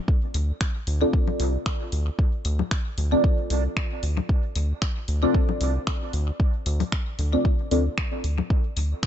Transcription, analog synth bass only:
0.35 0.52 D2 loud
0.87 1.05 D2 medium
1.40 1.58 C2 medium
1.93 2.10 D2 loud
2.45 2.63 D2 medium
2.98 3.15 D2 medium
3.50 3.68 C2 medium
4.03 4.21 D2 loud
4.56 4.73 D2 medium
5.08 5.26 D2 medium
5.61 5.79 C2 medium
6.14 6.31 D2 loud
6.66 6.84 D2 loud
7.19 7.36 D2 medium
7.71 7.89 D2 medium
8.24 8.42 D2 medium
8.77 8.94 D2 loud

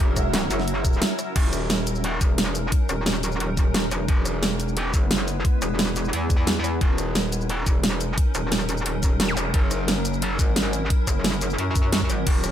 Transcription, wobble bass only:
0.00 0.49 E1 loud
0.51 1.00 F#1 loud
1.36 2.20 D#1 medium
2.21 2.71 E1 medium
2.89 3.39 D#1 loud
3.40 3.90 D#1 loud
3.92 4.07 E1 loud
4.08 4.92 E1 medium
4.94 5.43 F#1 loud
5.62 6.12 E1 loud
6.13 6.80 E2 loud
6.81 7.65 D#1 medium
7.66 8.16 E1 loud
8.35 8.84 D#1 loud
8.86 9.36 D#1 loud
9.37 9.53 E1 loud
9.54 10.38 F#1 medium
10.39 10.89 G#1 medium
11.07 11.57 F#1 loud
11.59 12.08 F#2 loud
12.10 12.25 G#1 loud
12.27 12.51 D#1 medium

